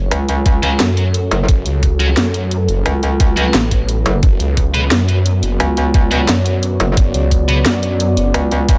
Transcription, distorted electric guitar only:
0.63 F#3 C#4 F#4
2.00 F#3 C#4 F#4
3.37 F#3 C#4 F#4
4.74 B3 F#4 B4
6.11 B3 F#4 B4
7.48 B3 F#4 B4

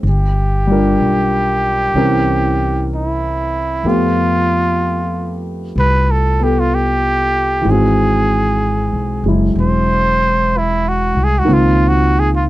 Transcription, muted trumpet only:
0.10 G4
2.95 E4
3.88 F4
5.79 B4
6.11 A4
6.44 G4
6.60 F4
6.74 G4
7.71 G#4
9.61 C5
10.58 E4
10.88 F#4
11.24 G#4
11.39 F#4
11.53 F4
11.88 F#4
12.19 G#4
12.36 F4

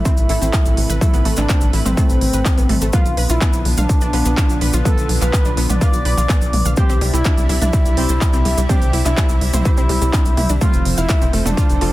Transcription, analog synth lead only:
Already playing: E4
1.01 E4
1.38 D4
1.86 C4
2.93 F4
3.30 E4
3.78 D4
4.85 A4
5.22 B4
5.70 D5
6.77 G4
7.14 E4
7.62 E4
8.69 G4
9.06 E4
9.54 E4
10.61 F4
10.98 E4
11.46 D4

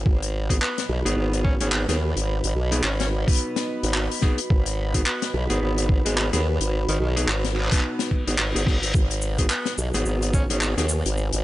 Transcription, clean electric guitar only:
0.49 B3 D#4 F#4 G#4
1.05 B3 D#4 F#4 G#4
1.61 B3 D#4 F#4 G#4
1.88 B3 D#4 F#4 G#4
2.71 B3 D#4 F#4 G#4
3.27 B3 D#4 F#4 B4
4.22 B3 D#4 F#4 G#4
4.94 B3 D#4 F#4 G#4
5.50 B3 D#4 F#4 G#4
6.05 B3 D#4 F#4 G#4
6.33 B3 D#4 F#4 G#4
7.16 B3 D#4 F#4 G#4
7.72 B3 D#4 F#4 B4
8.27 B3 D#4 F#4 G#4
8.55 B3 D#4 F#4 G#4
8.66 B3 D#4 F#4 G#4
9.38 B3 D#4 F#4 G#4
9.94 B3 D#4 F#4 G#4
10.50 B3 D#4 F#4 G#4
10.77 B3 D#4 F#4 G#4

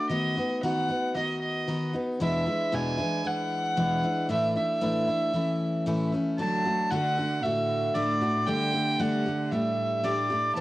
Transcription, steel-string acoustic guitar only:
Already playing: D4
0.09 D#3 B3 D#4 F#4
0.37 B3 D#4 F#4
0.63 D#3 B3 D#4 F#4
0.89 B3 D#4 F#4
1.15 D#3 B3 D#4 F#4
1.68 D#3 B3 D#4 F#4
1.93 B3 D#4 F#4
2.20 E2 B2 E3 G#3 D4 E4
2.46 E3 G#3 D4 E4
2.72 E2 B2 E3 G#3 D4 E4
2.97 E3 G#3 D4 E4
3.24 E3 G#3 D4 E4
3.76 E2 B2 E3 G#3 D4 E4
4.03 E3 G#3 D4 E4
4.29 A2 E3 A3 D4 E4
4.55 A3 D4 E4
4.81 A2 E3 A3 D4 E4
5.07 A3 D4 E4
5.34 E3 A3 C#4 E4
5.86 A2 E3 A3 C#4 E4
6.12 A3 C#4 E4
6.38 D3 A3 D4 F#4
6.65 A3 D4 F#4
6.91 D3 A3 D4 F#4
7.18 A3 D4 F#4
7.43 D3 A3 D4 F#4
7.95 D3 A3 D4 F#4
8.21 A3 D4 F#4
8.47 G3 A3 D4 G4
8.73 A3 D4 G4
8.99 G3 A3 D4 G4
9.26 A3 D4 G4
9.52 G3 A3 D4 G4
10.04 G3 A3 D4 G4
10.30 A3 D4 G4
10.56 A2 E3 B3 C#4 E4

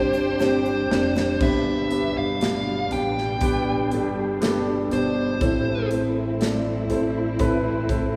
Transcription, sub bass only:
Already playing: G1
0.90 F1
1.41 G1
2.16 G1
2.91 A1
3.91 G1
4.91 G1
5.41 A1
6.90 A1
7.89 A1

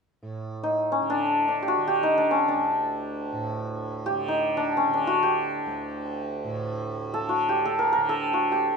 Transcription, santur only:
0.63 D#4
0.92 C#4
1.10 D4
1.48 D4
1.62 G4
1.68 F#4
1.87 G4
2.03 D#4
2.18 D4
2.31 C#4
2.48 D4
4.06 G4
4.28 D#4
4.57 D4
4.77 C#4
4.94 D4
5.07 F#4
5.23 G4
7.14 A4
7.29 F#4
7.49 G4
7.65 A4
7.79 A#4
7.93 A#4
8.09 A4
8.33 F#4
8.52 G4

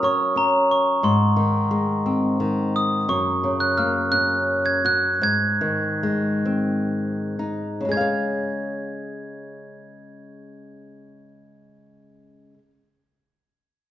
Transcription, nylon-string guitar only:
Already playing: F#3 C#4 A#4
0.03 C#5
0.36 C#4
1.03 G#2
1.36 D#3
1.71 G#3
2.06 C4
2.40 D#3
3.09 F#2
3.44 C#3
3.78 A#3
4.12 C#4
4.85 F#4
5.22 G#2
5.61 D#3
6.03 G#3
6.45 C4
7.39 D#4
7.81 C#3
7.85 G#3 G#4
7.93 C#5
7.97 C#5 F5

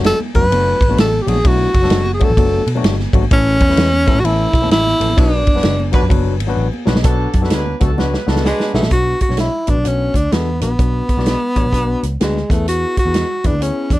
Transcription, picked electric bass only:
Already playing: F#1
0.35 F#1
0.43 F#2
0.51 F#1
0.81 G#1
0.97 A1
1.27 A#1
1.45 B1
1.74 F#1
1.91 F#1
2.30 A1
2.37 F#1
2.67 B2
2.84 G1
3.13 G#1
3.31 A1
3.61 E2
3.78 E2
4.14 A2
4.23 A1
4.53 B1
4.71 A1
5.00 A1
5.17 B1
5.47 F#1
5.64 F#1
6.03 F#2
6.10 F#1
6.41 G#1
6.57 A1
6.87 B1
6.96 B1
7.05 B1
7.34 F#2
7.52 D2
7.81 C#2
8.28 C#2
8.74 B1
8.83 A#1
8.91 B1
9.30 B1
9.68 A1
9.77 B1
9.86 B1
10.14 D2
10.32 E2
10.62 A#1
10.79 B1
11.17 B1
11.56 A1
11.65 B1
11.72 B1
12.03 C#2
12.21 D2
12.50 E2
13.06 E2
13.45 E2
13.53 D2
13.91 E2

